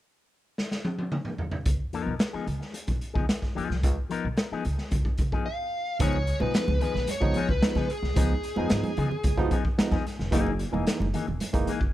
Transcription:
0.58 snare
0.71 snare
0.85 high tom
0.99 high tom
1.12 mid tom
1.25 mid tom
1.38 floor tom
1.51 floor tom
1.66 C#2, kick, closed hi-hat
1.93 F3 B3 D#4 A#4, closed hi-hat
2.06 B1
2.19 muted clean electric guitar stroke, snare, closed hi-hat
2.33 F3 B3 D#4 G#4, muted upright bass stroke
2.46 C#2, muted clean electric guitar stroke, closed hi-hat
2.60 muted clean electric guitar stroke, snare
2.74 muted clean electric guitar stroke, closed hi-hat
2.87 B1, muted clean electric guitar stroke, kick, closed hi-hat
3.01 closed hi-hat
3.14 C#2 F3 B3 D#4 G#4, kick
3.29 snare, closed hi-hat
3.42 muted clean electric guitar stroke, kick, snare
3.55 F2 F3 B3 D#4 G#4, closed hi-hat
3.70 C2, muted clean electric guitar stroke, snare
3.83 C#2, kick, closed hi-hat
4.09 F3 B3 D#4 A#4, closed hi-hat
4.25 B1
4.37 muted clean electric guitar stroke, snare, closed hi-hat
4.51 F3 B3 D#4 G#4, muted upright bass stroke
4.65 C#2, muted clean electric guitar stroke, closed hi-hat
4.78 muted clean electric guitar stroke, snare
4.91 C#2, muted clean electric guitar stroke, kick, closed hi-hat
5.05 muted clean electric guitar stroke, kick
5.18 C#3, kick, closed hi-hat
5.32 F3 B3 D#4 G#4, kick
5.46 F5
5.99 C#2 F3 G#3 B3 D#4 G#4 C#5, kick, closed hi-hat, low conga
6.13 muted conga
6.26 muted clean electric guitar stroke, closed hi-hat
6.40 B1 F3 G#3 B3 D#4 G#4 B4, high conga
6.54 muted clean electric guitar stroke, snare, closed hi-hat, muted conga
6.68 C#2, muted conga, high conga
6.81 F3 B3 D#4 G#4 B4, closed hi-hat, low conga
6.94 B1, muted clean electric guitar stroke, snare, low conga
7.07 C#5, closed hi-hat, muted conga, high conga
7.21 C#2 F3 G#3 B3 D#4, muted clean electric guitar stroke, kick, muted conga
7.34 F3 B3 D#4 G#4, closed hi-hat
7.49 C#2 B4, muted clean electric guitar stroke, kick
7.62 F3 G#3 B3 D#4, muted clean electric guitar stroke, snare, closed hi-hat, muted conga
7.75 C#3 F3 B3 D#4 G#4, kick, snare, muted conga, high conga
7.90 G#4, closed hi-hat
8.02 C2 B3 D#4, muted clean electric guitar stroke, snare
8.16 C#2 F3 G#3 B3 D#4 G#4, kick, closed hi-hat, muted conga, low conga
8.29 muted conga
8.43 muted clean electric guitar stroke, closed hi-hat
8.56 F2 F3 G#3 B3 D#4 G#4, high conga
8.70 G#2, muted clean electric guitar stroke, snare, closed hi-hat
8.84 closed hi-hat, muted conga, high conga
8.97 C#3 F3 B3 D#4 G#4, closed hi-hat, low conga
9.10 muted clean electric guitar stroke, low conga
9.24 C#2, kick, closed hi-hat, muted conga, high conga
9.37 F3 G#3 B3 D#4, muted clean electric guitar stroke, kick, muted conga
9.50 F3 B3 D#4 G#4, kick, closed hi-hat
9.65 muted clean electric guitar stroke, kick
9.78 F3 G#3 B3 D#4, muted clean electric guitar stroke, muted upright bass stroke, snare, closed hi-hat
9.91 F2 F3 B3 D#4 G#4, kick, snare, muted conga, high conga
10.06 muted clean electric guitar stroke, snare, closed hi-hat
10.18 F1 B3 D#4, muted clean electric guitar stroke, snare
10.31 F#1 E3 G#3 A#3 D#4 G#4, kick, closed hi-hat, muted conga, low conga
10.46 muted conga
10.59 muted clean electric guitar stroke, closed hi-hat
10.72 E1 E3 G#3 A#3 D#4 G#4, high conga
10.87 muted clean electric guitar stroke, snare, closed hi-hat, muted conga
11.00 F#1, muted conga, high conga
11.13 E3 A#3 D#4 G#4, closed hi-hat, low conga
11.27 E1, muted clean electric guitar stroke, low conga
11.40 closed hi-hat, muted conga, high conga
11.53 F#1 E3 G#3 A#3 D#4, muted clean electric guitar stroke, kick, closed hi-hat
11.67 E3 A#3 D#4 G#4, closed hi-hat
11.80 F#1, muted clean electric guitar stroke, kick

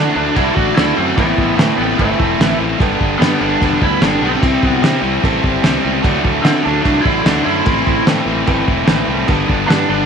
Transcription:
Already playing: D3 A3 D4 E4 F#4 A4 D5
0.14 D2 D3 A3 D4 F#4 A4
0.34 C2 D3 A3 D4 E4 F#4 A4, kick, crash
0.39 D5
0.53 A1 D3 A3 D4 F#4, kick
0.58 D5
0.75 D2 D3 A3 D4 E4 F#4 A4 D5, snare, crash
0.96 F#2 D3 A3 C4 D4 F#4
1.01 F#4
1.17 A1 A2 E3 A3 B3 C4 E4 A4 B4, kick, crash
1.37 A1 A2 E3 A3 C4 E4, kick
1.57 A2 E3 A3 C4 E4 A4 B4, snare, crash
1.61 D4
1.77 A1 A2 E3 A3 B3 C4 E4
1.82 G4
1.98 G1 A2 E3 A3 C4 E4 A4 B4, kick, crash
2.18 E1 A2 E3 A3 C4 E4, kick
2.39 A1 A2 E3 A3 C4 E4 A4 B4, snare, crash
2.58 A1 A2 E3 A3 C4 E4
2.78 G1 G2 D3 G3 B3 D4 G4 A4, kick, crash
2.98 G1 G2 D3 G3 B3 D4, kick
3.18 G2 D3 G3 B3 D4 G4
3.22 G3 B3 D4 A4, snare, crash
3.39 G1 G2 D3 G3 B3 D4 A4
3.59 E1 G2 D3 G3 B3 D4 G4 B4, kick, crash
3.79 D2 G2 D3 G3 B3 D4 B4, kick
3.83 E4
4.01 G1 G2 D3 G3 B3 D4 G4 A4, snare, crash
4.06 D4
4.21 B1 G2 D3 G3 B3 D4 G4
4.26 C4
4.41 C2 C3 G3 C4 E4 G4, kick, crash
4.62 C2 C3 G3 B3 C4 E4 F#4, kick
4.81 C3 G3 C4 E4 G4, snare, crash
5.02 C2 C3 G3 C4 E4
5.23 A1 C3 G3 C4 E4 A4, kick, crash
5.44 G1 C3 G3 C4 E4, kick
5.62 C2 C3 G3 C4 E4 G4, snare, crash
5.84 C#2 C3 G3 C4 E4
6.02 D2 D3 F#3 A3 D4 E4 F#4, kick, crash
6.24 D2 D3 F#3 A3 D4, kick
6.43 D3 F#3 A3 C4 D4 E4 F#4 A4, snare, crash
6.62 D2 D3 F#3 D4 A4
6.67 A3 D4
6.82 C2 D3 F#3 D4 E4 F#4 A4, kick, crash
6.86 A3 D4
7.01 D3 E4 C5
7.05 A1 F#3 A3 D4, kick
7.24 D2 D3 F#3 A3 D4 E4 F#4 A4, snare, crash
7.43 F#2 D3 F#3 A3 D4 E4 C5
7.65 A1 A2 E3 A3 C4 E4 A4 B5, kick, crash
7.85 A1 A2 E3 A3 C4 E4, kick
8.05 A2 E3 A3 C4 E4 A4 B4, snare, crash
8.26 A1 A2 E3 A3 C4 E4
8.47 G1 A2 E3 A3 C4 E4 A4 B4, kick, crash
8.67 E1 A2 E3 A3 C4 E4, kick
8.86 A1 A2 E3 A3 C4 E4 A4 B4, snare, crash
9.08 C2 A2 E3 A3 C4 E4
9.27 G1 G2 D3 G3 B3 D4 G4 A4, kick, crash
9.47 G1 G2 D3 G3 B3 D4, kick
9.68 G2 D3 G3 B3 D4 G4 A4, snare, crash
9.88 G1 G2 D3 G3 B3 D4 A4

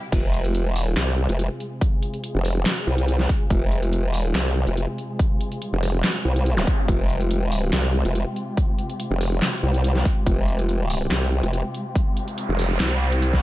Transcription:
0.12 F1 C3 G#3 F4 G#4, kick, closed hi-hat, crash
0.34 closed hi-hat
0.45 closed hi-hat
0.55 closed hi-hat
0.71 E1
0.76 open hi-hat
0.97 C2, snare, clap, closed hi-hat
1.29 F1, closed hi-hat
1.39 closed hi-hat
1.60 closed hi-hat
1.81 kick, closed hi-hat
2.03 closed hi-hat
2.14 closed hi-hat
2.24 closed hi-hat
2.35 F1
2.45 open hi-hat
2.66 snare, clap, closed hi-hat
2.87 C2
2.98 closed hi-hat
3.08 closed hi-hat
3.19 snare
3.29 kick, closed hi-hat
3.50 F1, kick, closed hi-hat
3.72 closed hi-hat
3.83 closed hi-hat
3.93 closed hi-hat
4.09 E1
4.14 open hi-hat
4.35 C2, snare, clap, closed hi-hat
4.67 F1, closed hi-hat
4.77 closed hi-hat
4.98 closed hi-hat
5.19 kick, closed hi-hat
5.41 closed hi-hat
5.52 closed hi-hat
5.62 closed hi-hat
5.73 F1
5.83 open hi-hat
6.04 snare, clap, closed hi-hat
6.25 C2
6.36 closed hi-hat
6.46 closed hi-hat
6.57 snare, zap
6.67 kick, closed hi-hat
6.88 F1 G4, kick, closed hi-hat
7.10 closed hi-hat
7.21 closed hi-hat
7.31 closed hi-hat
7.52 open hi-hat
7.73 C2, snare, clap, closed hi-hat
8.05 F1, closed hi-hat
8.15 closed hi-hat
8.36 closed hi-hat
8.57 kick, closed hi-hat
8.79 closed hi-hat
8.90 closed hi-hat
9.00 closed hi-hat
9.11 F1
9.21 open hi-hat
9.42 snare, clap, closed hi-hat
9.63 C2
9.74 closed hi-hat
9.84 closed hi-hat
9.95 snare
10.05 kick, closed hi-hat
10.27 F1, kick, closed hi-hat
10.48 closed hi-hat
10.59 closed hi-hat
10.69 closed hi-hat
10.90 open hi-hat
11.11 C2, snare, clap, closed hi-hat
11.43 F1, closed hi-hat
11.53 closed hi-hat
11.74 closed hi-hat
11.95 kick, closed hi-hat, noise sweep
12.17 closed hi-hat
12.28 closed hi-hat
12.38 closed hi-hat
12.49 F1
12.59 open hi-hat
12.80 C2, snare, clap, closed hi-hat
13.12 closed hi-hat
13.22 closed hi-hat
13.33 kick, snare

